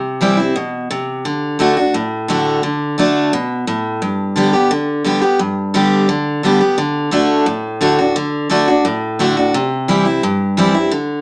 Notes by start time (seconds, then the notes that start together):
Already playing: C3
0.21 E3 G3 C4 E4
0.37 C4 E4
0.56 B2
0.90 C3
1.25 D3
1.59 D3 A3 D4 F#4
1.77 D4 F#4
1.94 A2
2.28 D3 A3 D4 F#4
2.63 D3
2.98 D3 A3 D4 F#4
3.33 B2
3.67 A2
4.02 G2
4.36 D3 G3 B3 G4
4.53 B3 G4
4.71 D3
5.04 D3 G3 B3 G4
5.21 B3 G4
5.39 G2
5.74 D3 G3 B3 G4
6.09 D3
6.43 D3 G3 B3 G4
6.61 B3 G4
6.78 D3
7.11 D3 A3 D4 F#4
7.46 A2
7.81 D3 A3 D4 F#4
7.99 D4 F#4
8.16 D3
8.49 D3 A3 D4 F#4
8.68 D4 F#4
8.85 A2
9.19 D3 A3 D4 F#4
9.37 D4 F#4
9.54 C3
9.88 E3 G3 C4 E4
10.05 C4 E4
10.23 G2
10.57 E3 G3 C4 E4
10.74 C4 E4
10.91 D3